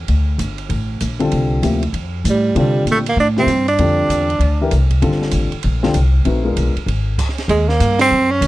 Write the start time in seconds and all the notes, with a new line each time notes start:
0.08 D2, ride
0.38 G1, hi-hat pedal, ride
0.58 ride
0.69 A1, ride
1.01 A#1, hi-hat pedal, ride
1.19 D3 G3 C4 F4 A4, ride
1.32 C2, ride
1.62 D2 C3 F3 A#3 E4 G4, hi-hat pedal, ride
1.83 ride
1.93 F2, ride
2.24 A2, hi-hat pedal, ride
2.30 G3
2.55 C3 D3 G3 C4 F4 A4, ride
2.85 A#2, hi-hat pedal, ride
2.91 A3
3.06 A#3, ride
3.16 A2
3.20 D4
3.37 C3 F3 A#3 C4 E4 G4, snare
3.46 G2, hi-hat pedal, ride
3.68 D4, ride
3.79 F2 D3 G3 C4 F4 A4, ride
4.08 E2, hi-hat pedal, ride
4.30 ride
4.39 D2, ride
4.61 E3 A3 D4 G4 A#4
4.71 C2, hi-hat pedal, ride
4.91 kick, ride
5.02 G1 D3 G3 C4 F4 A4, ride
5.12 snare
5.22 snare
5.31 A1, hi-hat pedal, ride
5.52 muted upright bass stroke, ride
5.63 A#1, ride
5.83 D3 G3 C4 F4 A4, snare
5.94 C2, hi-hat pedal, ride
6.25 A#1 A3 C4 D#4 F#4 B4, ride
6.44 G#3 B3 D4 F4 A#4
6.57 B1, hi-hat pedal, ride
6.75 muted upright bass stroke, ride
6.86 G#1, ride
7.18 kick, hi-hat pedal, crash, ride
7.29 snare
7.38 snare, ride
7.48 D#2 G#3, ride
7.69 A#3, snare
7.80 G2, hi-hat pedal, ride
7.99 C4, snare, ride
8.11 F#2
8.31 C#4
8.41 C#2, hi-hat pedal, ride